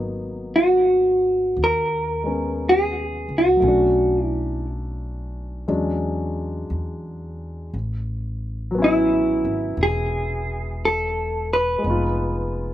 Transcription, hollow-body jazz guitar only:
0.56 F#4
1.64 A#4
2.69 G#4
3.38 F#4
4.23 E4
8.84 E4
9.83 G#4
10.85 A4
11.53 B4

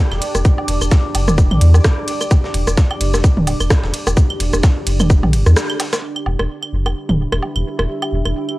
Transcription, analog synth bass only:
0.12 E1
0.35 E1
0.68 E1
0.81 E1
1.15 F#1
1.28 E1
1.51 B1
1.61 E2
2.54 E1
2.67 E1
3.01 F#1
3.14 E1
3.37 D1
3.60 E1
3.84 E1
4.07 E1
4.40 E1
4.53 E1
4.87 F#1
5.00 E1
5.23 B1
5.33 G1
5.46 E2
6.26 E1
6.39 E1
6.73 F#1
6.86 E1
7.09 D1
7.32 E1
7.56 E1
7.79 E1
8.12 E1
8.25 E1

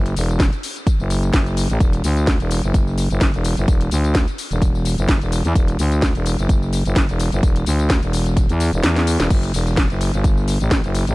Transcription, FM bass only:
Already playing: F#1
0.16 E1
1.00 F#1
1.34 F#1
1.70 A1
1.80 E1
2.04 D2
2.40 E1
2.63 F#1
3.10 F#1
3.34 E1
3.57 F#1
3.68 E1
3.91 D2
4.51 E1
4.98 F#1
5.21 E1
5.45 E2
5.55 E1
5.79 D2
6.15 E1
6.38 F#1
6.85 F#1
7.09 E1
7.32 F#1
7.43 E1
7.66 D2
8.03 E1
8.49 E2
8.73 E1
8.84 E2
9.20 E1
9.30 F#1
9.54 E1
9.90 F#1
10.13 G1
10.60 A1
10.84 F#1
11.07 A1

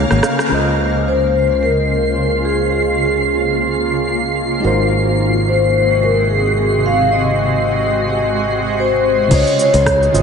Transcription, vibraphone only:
Already playing: C#5
1.08 C5
1.63 A#4
2.45 G#4
2.72 G#4
5.49 C5
6.03 A#4
6.30 G#4
6.58 G#4
6.86 F5
7.13 D#5
8.80 C5
9.34 C#5
9.61 C#5
10.17 D#5

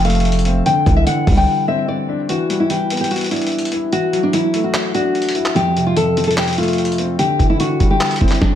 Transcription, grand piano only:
Already playing: F2 C3 F3
0.05 A3
0.46 C4
0.66 D3
0.86 E3
1.07 D3
1.27 G3
1.68 C4
2.08 D4
2.30 E3
2.50 G3
2.70 E3
2.91 B3
3.31 D4
3.72 E4
3.92 E3
4.13 F#3
4.33 E3
4.54 A3
4.95 D4
5.35 E4
5.55 F2
5.76 C3
5.96 F2
6.17 F3
6.58 A3
6.99 C4
7.20 D3
7.39 E3
7.60 D3
7.80 G3
8.21 C4

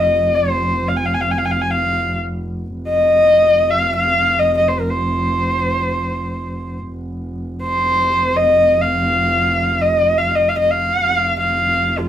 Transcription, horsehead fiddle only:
Already playing: D#5
0.35 C5
0.89 F5
0.97 G#5
1.06 F5
1.14 G#5
1.21 F5
1.31 G#5
1.38 F5
1.45 G#5
1.51 F5
1.61 G#5
1.71 F5
2.88 D#5
3.70 F5
3.96 F5
4.39 D#5
4.57 D#5
4.68 C5
4.80 A#4
4.90 C5
7.63 C5
8.37 D#5
8.82 F5
9.81 D#5
10.18 F5
10.35 D#5
10.49 F5
10.59 D#5
10.71 F5
11.40 F5
12.00 F4

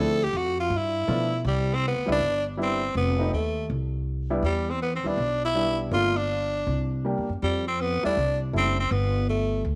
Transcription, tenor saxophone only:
0.00 A4
0.23 G4
0.37 F#4
0.59 F4
0.77 E4
1.47 G3
1.74 C4
1.87 B3
2.12 D4
2.62 C4
2.97 B3
3.33 A3
4.45 G3
4.70 C4
4.82 B3
4.95 C4
5.07 D4
5.45 E4
5.93 F4
6.16 D4
7.43 G3
7.67 C4
7.81 B3
8.05 D4
8.57 C4
8.79 C4
8.91 B3
9.29 A3

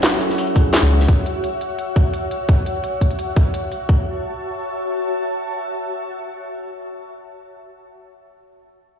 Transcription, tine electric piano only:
Already playing: F#3 C#4 E4 B4
0.20 F#3 C#4 E4 A4
0.55 F#3 C#4 E4 G#4
0.72 F#3 C#4 E4 G#4

